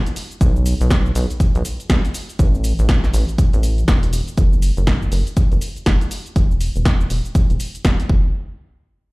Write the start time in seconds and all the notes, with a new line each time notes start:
0.06 closed hi-hat, shaker
0.16 open hi-hat, shaker
0.31 closed hi-hat, shaker
0.41 B1, kick, closed hi-hat, shaker
0.56 shaker
0.66 open hi-hat, shaker
0.81 B1, closed hi-hat, shaker
0.90 kick, snare, closed hi-hat, shaker
1.06 shaker
1.15 B1, open hi-hat, shaker
1.30 closed hi-hat, shaker
1.40 kick, closed hi-hat, shaker
1.55 B1, closed hi-hat, shaker
1.65 open hi-hat, shaker
1.80 closed hi-hat, shaker
1.90 B1, kick, snare, closed hi-hat, shaker
2.05 closed hi-hat, shaker
2.14 open hi-hat, shaker
2.29 closed hi-hat, shaker
2.39 A1, kick, closed hi-hat, shaker
2.54 shaker
2.64 open hi-hat, shaker
2.79 A1, closed hi-hat, shaker
2.89 kick, snare, closed hi-hat, shaker
3.04 snare, shaker
3.14 A1, open hi-hat, shaker
3.29 closed hi-hat, shaker
3.38 kick, closed hi-hat, shaker
3.53 A1, closed hi-hat, shaker
3.63 open hi-hat, shaker
3.78 closed hi-hat, shaker
3.88 E1, kick, snare, closed hi-hat, shaker
4.03 closed hi-hat, shaker
4.13 open hi-hat, shaker
4.28 closed hi-hat, shaker
4.37 F#1, kick, closed hi-hat, shaker
4.53 shaker
4.62 open hi-hat, shaker
4.77 F#1, closed hi-hat, shaker
4.87 kick, snare, closed hi-hat, shaker
5.02 shaker
5.12 F#1, open hi-hat, shaker
5.27 closed hi-hat, shaker
5.37 kick, closed hi-hat, shaker
5.52 F#1, closed hi-hat, shaker
5.61 open hi-hat, shaker
5.76 closed hi-hat, shaker
5.86 F#1, kick, snare, closed hi-hat, shaker
6.01 closed hi-hat, shaker
6.11 open hi-hat, shaker
6.26 closed hi-hat, shaker
6.36 E1, kick, closed hi-hat, shaker
6.51 shaker
6.61 open hi-hat, shaker
6.76 E1, closed hi-hat, shaker
6.85 kick, snare, closed hi-hat, shaker
7.01 shaker
7.10 E1, open hi-hat, shaker
7.25 closed hi-hat, shaker
7.35 kick, closed hi-hat, shaker
7.50 E1, closed hi-hat, shaker
7.60 open hi-hat, shaker
7.75 closed hi-hat, shaker
7.85 E1, kick, snare, closed hi-hat, shaker
8.00 closed hi-hat, shaker
8.09 F#1, kick